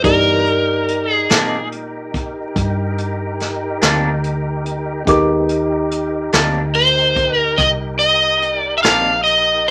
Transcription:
0.03 1.26 G2 medium
0.03 0.46 E3 medium
0.03 0.46 B3 medium
0.03 5.03 D#4 medium
0.03 0.45 D#4 soft
0.03 5.03 G4 soft
0.03 0.45 G4 medium
0.03 1.13 A#4 medium
0.03 5.03 A#4 soft
0.03 5.03 D5 medium
0.03 kick medium
0.03 closed hi-hat medium
0.45 5.03 D#4 medium
0.45 5.03 G4 medium
0.45 5.03 A#4 medium
0.45 closed hi-hat soft
0.88 closed hi-hat medium
1.13 1.68 G#4 medium
1.29 2.52 A#2 medium
1.29 1.56 C3 medium
1.29 1.56 D#3 medium
1.29 1.55 A#3 medium
1.29 1.55 D4 medium
1.29 snare medium
1.29 closed hi-hat medium
1.72 closed hi-hat medium
2.14 kick medium
2.14 closed hi-hat soft
2.56 3.78 G2 medium
2.56 kick medium
2.56 closed hi-hat medium
2.98 closed hi-hat medium
3.40 snare soft
3.40 closed hi-hat medium
3.81 5.04 D2 medium
3.81 4.07 C3 medium
3.81 4.07 D#3 medium
3.81 4.07 A#3 medium
3.81 4.07 D4 medium
3.81 snare medium
3.81 closed hi-hat medium
4.24 closed hi-hat medium
4.66 closed hi-hat medium
5.05 6.29 D#2 medium
5.05 5.48 G#3 medium
5.05 5.48 B3 medium
5.05 5.48 D#4 medium
5.05 9.71 D#4 medium
5.05 5.47 G4 medium
5.05 9.71 G4 medium
5.05 9.71 D6 medium
5.05 kick medium
5.05 closed hi-hat medium
5.09 9.71 A#4 medium
5.48 9.71 D#4 medium
5.48 9.71 G4 medium
5.48 9.71 A#4 medium
5.48 closed hi-hat medium
5.91 closed hi-hat medium
6.32 7.55 D2 medium
6.32 6.59 C3 medium
6.32 6.59 D#3 medium
6.32 6.58 A#3 medium
6.32 6.58 D4 medium
6.32 snare medium
6.32 closed hi-hat medium
6.74 7.37 C5 medium
6.74 closed hi-hat soft
7.16 kick medium
7.16 closed hi-hat medium
7.37 7.62 A#4 medium
7.58 8.81 C2 medium
7.58 7.69 D#5 medium
7.58 kick medium
7.58 closed hi-hat medium
7.99 8.54 D#5 medium
7.99 closed hi-hat medium
8.42 closed hi-hat soft
8.54 8.77 D5 medium
8.78 8.82 E5 medium
8.83 9.71 A#1 medium
8.83 9.10 C3 medium
8.83 9.10 D#3 medium
8.83 9.10 A#3 medium
8.83 9.10 D4 medium
8.83 9.23 F5 medium
8.83 snare medium
8.83 closed hi-hat medium
9.24 9.69 D#5 medium
9.24 closed hi-hat soft

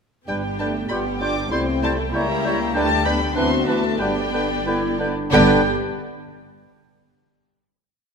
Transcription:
0.27 0.86 G1 soft
0.27 0.42 G3 soft
0.27 0.36 G3 soft
0.27 0.58 G3 soft
0.27 0.87 B3 soft
0.27 0.42 D4 soft
0.27 0.87 D4 soft
0.27 0.86 G4 soft
0.27 0.43 B4 soft
0.27 0.86 G5 soft
0.27 0.36 G5 medium
0.27 0.35 G6 soft
0.59 0.74 G3 soft
0.59 0.90 A3 soft
0.59 0.74 A3 soft
0.59 0.73 D4 soft
0.59 0.74 B4 soft
0.59 0.67 A5 medium
0.59 0.67 G6 soft
0.90 1.51 G1 soft
0.90 1.52 G3 soft
0.90 1.05 G3 soft
0.90 1.21 B3 medium
0.90 2.14 B3 soft
0.90 1.21 B3 medium
0.90 1.04 F4 soft
0.90 1.51 G4 soft
0.90 1.06 D5 soft
0.90 1.50 G5 soft
0.90 0.98 B5 medium
0.90 0.97 G6 soft
1.21 1.35 G3 soft
1.21 1.51 D4 medium
1.21 1.53 D4 medium
1.21 1.35 F4 soft
1.21 1.37 D5 soft
1.21 1.52 D6 medium
1.21 1.28 G6 soft
1.51 2.13 C2 medium
1.51 1.66 G3 soft
1.51 2.14 A3 medium
1.51 1.82 C4 medium
1.51 1.83 C4 medium
1.51 1.65 E4 medium
1.51 2.12 E4 soft
1.51 1.67 C5 soft
1.51 2.12 G5 soft
1.51 1.59 C6 medium
1.51 1.59 G6 medium
1.82 1.97 G3 medium
1.82 2.14 A3 medium
1.82 1.97 A3 medium
1.82 1.97 E4 soft
1.82 1.98 C5 medium
1.82 1.92 A5 medium
1.82 1.89 G6 soft
2.12 2.75 C#2 medium
2.12 2.73 G3 medium
2.12 2.28 G3 medium
2.12 2.74 A#3 medium
2.12 2.26 E4 medium
2.12 2.75 E4 medium
2.12 2.73 G4 medium
2.12 2.29 C#5 medium
2.12 2.74 E5 medium
2.12 2.74 A#5 medium
2.12 2.20 G6 medium
2.44 2.59 G3 soft
2.44 2.58 E4 medium
2.44 2.60 C#5 medium
2.44 2.51 G6 medium
2.73 3.33 D2 medium
2.73 3.33 G3 medium
2.73 2.90 G3 medium
2.73 3.06 A3 medium
2.73 2.88 D4 medium
2.73 3.32 D4 medium
2.73 3.32 G4 medium
2.73 2.90 B4 medium
2.73 3.32 G5 medium
2.73 3.06 A5 loud
2.73 2.80 G6 medium
3.05 3.20 G3 medium
3.05 3.36 B3 medium
3.05 3.20 B3 medium
3.05 3.19 D4 medium
3.05 3.20 B4 medium
3.05 3.37 B5 medium
3.05 3.12 G6 medium
3.35 4.00 D2 medium
3.35 3.52 E3 medium
3.35 3.98 B3 medium
3.35 3.67 C4 medium
3.35 3.68 C4 medium
3.35 3.50 D4 medium
3.35 3.98 D4 medium
3.35 4.01 F#4 medium
3.35 3.51 B4 medium
3.35 4.01 E5 medium
3.35 3.67 C6 medium
3.35 3.43 F#6 medium
3.66 4.00 A3 medium
3.66 3.76 A3 medium
3.66 3.83 D4 soft
3.66 3.83 B4 soft
3.66 4.00 A5 medium
3.66 3.74 F#6 soft
3.70 3.84 E3 soft
3.99 5.09 G1 soft
3.99 4.16 D3 medium
3.99 4.99 G3 medium
3.99 4.97 G3 medium
3.99 5.09 B3 soft
3.99 5.09 D4 medium
3.99 4.15 D4 medium
3.99 5.09 G4 soft
3.99 4.14 B4 soft
3.99 5.09 D5 medium
3.99 5.00 G5 medium
3.99 4.06 G6 medium
4.33 4.49 D3 soft
4.33 4.48 D4 soft
4.33 4.48 B4 soft
4.33 4.41 G6 soft
4.66 4.83 D3 soft
4.66 5.00 E4 medium
4.66 4.81 B4 soft
4.66 4.74 G6 soft
4.99 5.15 D3 soft
4.99 5.32 D4 medium
4.99 5.15 B4 soft
4.99 5.07 G6 soft
5.32 5.70 G1 medium
5.32 5.62 D3 medium
5.32 5.70 G3 medium
5.32 5.62 G3 medium
5.32 5.70 B3 medium
5.32 5.62 D4 medium
5.32 5.70 D4 medium
5.32 5.70 G4 medium
5.32 5.62 B4 medium
5.32 5.70 D5 medium
5.32 5.70 G5 loud
5.32 5.70 G6 medium

